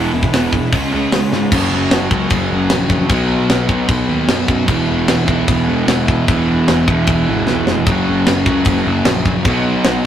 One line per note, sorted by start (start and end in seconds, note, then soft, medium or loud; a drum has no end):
0.00 0.12 E2 loud
0.00 0.12 B2 loud
0.00 0.11 E3 loud
0.00 0.12 E3 loud
0.00 0.12 G#3 loud
0.00 0.12 B3 loud
0.00 0.13 E4 loud
0.12 0.25 E1 medium
0.12 0.31 E2 medium
0.12 0.31 B2 medium
0.12 0.32 E3 medium
0.12 0.33 G#3 medium
0.12 0.33 B3 medium
0.12 0.33 E4 medium
0.23 kick medium
0.32 0.45 E1 medium
0.32 0.51 E2 medium
0.32 0.51 B2 loud
0.32 0.51 E3 loud
0.32 0.52 E3 medium
0.32 0.52 G#3 medium
0.32 0.52 B3 loud
0.32 0.52 E4 loud
0.32 snare loud
0.32 open hi-hat medium
0.53 0.65 E1 medium
0.53 0.70 E2 medium
0.53 0.71 B2 medium
0.53 0.71 E3 medium
0.53 0.71 G#3 medium
0.53 0.71 B3 medium
0.53 0.71 E4 medium
0.53 kick medium
0.72 0.84 C#2 medium
0.72 0.91 C#3 medium
0.72 0.91 G#3 medium
0.72 0.92 G#3 medium
0.72 0.92 B3 medium
0.72 0.91 C#4 medium
0.72 0.92 F4 medium
0.72 kick loud
0.72 open hi-hat medium
0.92 1.05 C#2 medium
0.92 1.10 C#3 medium
0.92 1.12 C#3 medium
0.92 1.11 G#3 loud
0.92 1.13 G#3 loud
0.92 1.12 B3 medium
0.92 1.11 C#4 loud
0.92 1.13 F4 loud
1.12 1.25 C#2 medium
1.12 1.30 C#3 medium
1.12 1.31 C#3 medium
1.12 1.30 G#3 medium
1.12 1.32 G#3 medium
1.12 1.32 B3 medium
1.12 1.32 F4 medium
1.12 snare loud
1.12 open hi-hat medium
1.32 1.44 G#2 medium
1.32 1.50 C#3 medium
1.32 1.50 G#3 medium
1.32 1.51 G#3 medium
1.32 1.51 B3 medium
1.32 1.51 F4 medium
1.32 snare medium
1.52 1.66 F#1 loud
1.52 2.50 F#2 medium
1.52 2.10 F#2 medium
1.52 2.50 C#3 loud
1.52 2.11 C#3 loud
1.52 2.49 F#3 loud
1.52 2.11 F#3 loud
1.52 2.10 A#3 medium
1.52 2.10 C#4 loud
1.52 2.10 F#4 loud
1.52 kick loud
1.52 crash loud
1.52 crash medium
1.71 1.86 F#1 medium
1.91 2.06 F#1 medium
1.91 snare loud
1.91 crash medium
2.10 2.26 C#2 medium
2.10 3.10 F#2 medium
2.10 3.09 C#3 medium
2.10 3.09 F#3 medium
2.10 3.09 A#3 medium
2.10 3.09 C#4 medium
2.10 3.08 F#4 loud
2.10 kick medium
2.30 2.45 F#1 medium
2.30 kick loud
2.30 crash medium
2.50 2.66 F#1 loud
2.50 2.69 F#2 medium
2.50 2.69 C#3 medium
2.50 2.69 F#3 medium
2.70 3.00 A#1 medium
2.70 3.09 F#2 medium
2.70 3.09 C#3 medium
2.70 3.10 F#3 medium
2.70 snare loud
2.70 crash medium
2.90 kick medium
3.10 3.39 B1 loud
3.10 3.68 B2 loud
3.10 4.08 B2 medium
3.10 3.68 F#3 loud
3.10 4.08 F#3 loud
3.10 3.70 B3 loud
3.10 4.08 B3 loud
3.10 3.68 D#4 loud
3.10 kick loud
3.10 crash medium
3.50 3.65 B1 medium
3.50 snare loud
3.50 crash medium
3.69 3.84 B1 medium
3.69 4.67 B2 medium
3.69 4.68 F#3 medium
3.69 4.69 B3 medium
3.69 4.67 D#4 medium
3.69 kick medium
3.89 4.04 B1 medium
3.89 kick loud
3.89 crash medium
4.08 4.24 D#2 medium
4.08 4.28 B2 medium
4.08 4.28 F#3 medium
4.08 4.30 B3 loud
4.28 4.43 F#2 medium
4.28 4.67 B2 medium
4.28 4.68 F#3 medium
4.28 7.80 B3 medium
4.28 snare loud
4.28 crash medium
4.48 4.63 F#2 medium
4.48 kick medium
4.68 4.83 E1 loud
4.68 5.66 E2 loud
4.68 5.67 B2 loud
4.68 5.29 E3 medium
4.68 5.68 E3 loud
4.68 5.28 G#3 medium
4.68 5.28 B3 loud
4.68 5.27 E4 loud
4.68 kick loud
4.68 crash medium
4.89 5.04 E1 medium
5.08 5.24 E1 medium
5.08 snare loud
5.08 crash medium
5.26 5.43 B1 medium
5.26 6.26 E2 medium
5.26 6.26 B2 medium
5.26 6.25 E3 medium
5.26 6.27 G#3 medium
5.26 6.27 B3 medium
5.26 6.26 E4 medium
5.26 kick medium
5.30 6.25 E3 medium
5.48 5.63 E1 medium
5.48 kick loud
5.48 crash medium
5.68 5.83 E1 loud
5.68 5.87 E2 medium
5.68 5.87 B2 medium
5.68 5.87 E3 loud
5.87 6.17 E1 medium
5.87 6.27 E2 medium
5.87 6.27 B2 medium
5.87 6.28 E3 medium
5.87 snare loud
5.87 crash medium
6.08 kick medium
6.26 6.57 E1 loud
6.26 7.27 E2 medium
6.26 7.27 B2 loud
6.26 6.85 E3 medium
6.26 6.86 G#3 loud
6.26 6.86 B3 loud
6.26 6.85 E4 loud
6.26 kick loud
6.26 crash medium
6.31 7.27 E3 loud
6.68 6.83 E1 medium
6.68 snare loud
6.68 crash medium
6.87 7.02 E1 medium
6.87 7.86 E2 medium
6.87 7.86 B2 medium
6.87 7.85 E3 medium
6.87 7.86 G#3 medium
6.87 7.85 B3 medium
6.87 7.85 E4 loud
6.87 kick medium
7.07 7.22 E1 medium
7.07 kick loud
7.07 crash medium
7.28 7.43 G#1 medium
7.28 7.47 E2 medium
7.28 7.47 B2 medium
7.28 7.46 E3 medium
7.47 7.62 B1 medium
7.47 7.85 E2 medium
7.47 7.87 B2 medium
7.47 7.87 E3 medium
7.47 snare medium
7.67 7.82 F1 medium
7.67 snare medium
7.85 8.02 F#1 loud
7.85 8.44 F#2 loud
7.85 8.84 F#2 medium
7.85 8.44 C#3 loud
7.85 8.85 C#3 loud
7.85 8.46 F#3 medium
7.85 8.85 F#3 loud
7.85 8.45 A#3 loud
7.85 8.44 C#4 loud
7.85 kick loud
7.85 crash medium
8.09 8.23 F#1 medium
8.27 8.42 F#1 medium
8.27 snare loud
8.27 crash medium
8.45 8.61 C#2 medium
8.45 9.45 F#2 medium
8.45 9.45 C#3 medium
8.45 9.44 F#3 medium
8.45 9.44 A#3 medium
8.45 9.44 C#4 medium
8.45 kick medium
8.65 8.81 F#1 medium
8.65 kick loud
8.65 crash medium
8.85 9.00 F#1 loud
8.85 9.04 F#2 medium
8.85 9.05 C#3 medium
8.85 9.05 F#3 medium
9.04 9.34 A#1 loud
9.04 9.44 F#2 medium
9.04 9.44 C#3 medium
9.04 9.45 F#3 medium
9.04 snare loud
9.04 crash medium
9.26 kick medium
9.45 9.74 B1 loud
9.45 10.04 B2 medium
9.45 10.06 B2 medium
9.45 10.04 F#3 loud
9.45 10.06 F#3 loud
9.45 10.04 B3 loud
9.45 10.06 B3 loud
9.45 10.03 D#4 loud
9.45 kick loud
9.45 crash medium
9.84 10.00 B1 medium
9.84 snare loud
9.84 crash medium